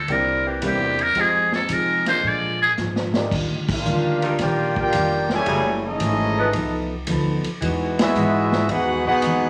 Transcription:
Already playing: A4
0.08 C2 C3 G3 A#3 C4 D4 E4 G4, kick, ride
0.12 A#4
0.45 E3 A#3 C4 D4 G4
0.61 E2 C3 G3 A#3 C4 D4 E4 G4, kick, hi-hat pedal, ride
0.67 G4
0.99 A#4, ride
1.15 F2 F3 G#3 C4 D#4 F4 G4 G#4, kick, ride
1.20 G#4
1.52 A4, snare
1.69 C3 F3 C4 D#4 G#4, kick, hi-hat pedal, ride
1.73 A#4
2.05 D3 G#3 A#3 F4 C5, snare, ride
2.23 A#2 F3 G#3 D4, kick
2.28 D5
2.62 G#4
2.77 G#2 A#2 F3 G#3 D4, snare, hi-hat pedal
2.96 snare
3.14 A#3 D4 D#4 F4 G4, snare
3.31 D#2 D#3 G3 D4 F4, kick, crash
3.49 D2
3.67 A#1 A#3 D4 F4 G4 F5, kick, crash
3.71 A#4
3.85 D2 D#3 G3 D4 F4, hi-hat pedal
4.22 D#3 G3 D4 F4, ride
4.39 A#1 D#3 G3 A#3 D4 F4 G4 A#4 D5 G5, kick, snare, ride
4.76 A#3 D4 F4 G4 A#4 D5 G5, kick
4.92 F1 D#3 G3 D4 F4, kick, hi-hat pedal, ride
5.29 C#3 E3 G3 E4 A4 C#5 G#5, snare
5.46 F#1 F#3 A3 E4 G#4, kick, ride
5.86 E3 A3 C#4 D#4 G#4 A4 D#5
6.00 G#1 F#3 A3 E4 G#4, kick, hi-hat pedal, ride
6.37 F3 B3 D#4 B4
6.53 C2 F3 B3 D#4 A4, kick, ride
7.07 D2 F3 B3 D#4 A4, kick, hi-hat pedal, ride
7.44 muted upright bass stroke, ride
7.61 E2 E3 G#3 D#4 E4 F#4, kick, ride
7.99 G#3 B3 E4 F#4 G#4 E5, snare, ride
8.15 G#2 E3 G#3 D#4 F#4, hi-hat pedal
8.52 snare
8.69 E2 E3 G#3 B3 D#4 F#4 G#4 B4 F#5, kick, ride
8.87 D#2
9.05 B1 B3 D#4 F#4 G#4 B4 F#5
9.22 D#2 E3 G#3 D#4 F#4, kick, hi-hat pedal, ride

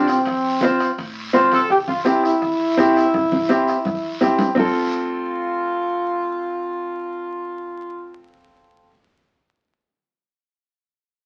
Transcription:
Already playing: C2 C4 F4 G4
0.08 C4, bombo rim, high timbale, short guiro
0.25 F2, bombo low, bombo rim, high conga, high timbale, long guiro
0.61 C4 F4 C5, bombo rim, high conga, high timbale, short guiro
0.80 bombo rim, high timbale, short guiro
0.97 A2, bombo low, bombo rim, high conga, high timbale, long guiro
1.33 C2 C4 F4 C5, bombo rim, high conga, high timbale, low timbale, short guiro
1.52 A4, bombo rim, high conga, high timbale, short guiro
1.70 C2 G4, bombo low, bombo rim, high conga, long guiro
1.88 F4, high conga
2.05 C4 E4 G4, bombo rim, high conga, short guiro
2.24 E4, bombo rim, short guiro
2.41 E2, bombo low, bombo rim, high conga, long guiro
2.77 G2 C4 E4 G4, bombo low, bombo rim, high conga, short guiro
2.96 bombo rim, short guiro
3.14 C2, bombo low, bombo rim, high conga, long guiro
3.32 high conga
3.49 C4 E4 G4, bombo rim, high conga, short guiro
3.68 bombo rim, short guiro
3.85 E2, bombo low, bombo rim, low conga, long guiro
4.21 G2 C4 E4 G4, bombo low, bombo rim, low conga, short guiro
4.39 bombo rim, low conga, short guiro
4.55 F1 C4 F4, bombo low, low conga, long guiro
4.60 A4

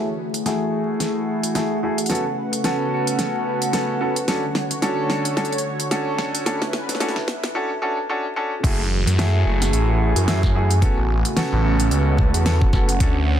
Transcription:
Already playing: E3 A3 E4 F#4 G#4 B4 C#5 E5
0.34 closed hi-hat
0.46 A3 E4 F#4 G#4 F#5, snare, closed hi-hat
1.00 snare, closed hi-hat
1.44 closed hi-hat
1.55 A3 E4 F#4 G#4, snare, closed hi-hat
1.83 A3 E4 F#4 G#4
1.98 closed hi-hat
2.06 C#3 C#4 B4, snare, closed hi-hat
2.10 B3 C#4 F#4 A4, closed hi-hat
2.15 closed hi-hat
2.53 B4, closed hi-hat
2.64 B3 C#4 F#4 A4, snare, closed hi-hat
3.07 closed hi-hat
3.19 snare, closed hi-hat
3.62 closed hi-hat
3.73 B3 C#4 F#4 A4, snare, closed hi-hat
4.00 B3 C#4 F#4 A4
4.16 closed hi-hat
4.28 D3 C#4 D4 F#4 A4 C#5, snare, closed hi-hat
4.52 C#5, snare
4.71 closed hi-hat
4.82 C#4 D4 F#4 A4, snare, closed hi-hat
5.10 snare
5.25 closed hi-hat
5.37 C#4 D4 F#4 A4, snare, closed hi-hat
5.45 closed hi-hat
5.52 closed hi-hat
5.58 closed hi-hat
5.80 closed hi-hat
5.91 C#4 D4 F#4 A4, snare, closed hi-hat
6.18 snare
6.35 closed hi-hat
6.45 D3 C#4 D4 E4 F#4 A4 B4, snare, closed hi-hat
6.62 snare
6.70 B4, snare
6.89 snare, closed hi-hat
6.95 E5, snare
7.00 C#4 D4 F#4 A4, snare, closed hi-hat
7.09 snare
7.16 snare
7.28 snare
7.44 snare
7.55 C#4 D4 F#4 A4
7.82 C#4 D4 F#4 A4
8.09 C#4 D4 F#4 A4
8.36 C#4 D4 F#4 A4
8.63 F#1 E3 A3 E4 F#4 G#4, kick, closed hi-hat, crash
8.79 F#1
9.06 F#2, closed hi-hat
9.18 A3 E4 F#4 G#4, snare, closed hi-hat
9.45 F#1
9.54 G#5
9.62 snare, closed hi-hat
9.73 A1, closed hi-hat
10.16 F#2, closed hi-hat
10.28 A3 E4 F#4 G#4, snare, closed hi-hat
10.43 kick, snare
10.55 A3 E4 F#4 G#4
10.71 closed hi-hat
10.82 C#3 B3 C#4 F#4 A4, kick, closed hi-hat
10.98 A1
11.07 B4
11.25 closed hi-hat
11.37 B3 C#4 F#4 A4, snare, closed hi-hat
11.49 A1 F#5
11.80 closed hi-hat
11.91 C#2, closed hi-hat
12.18 kick
12.34 E2, closed hi-hat
12.46 B3 C#4 F#4 A4, snare, closed hi-hat
12.61 F#1, kick
12.73 B3 C#4 F#4 A4, kick, snare
12.89 closed hi-hat
13.00 D2 D3 C#4 D4 F#4 A4 C#5, kick, closed hi-hat
13.16 D2

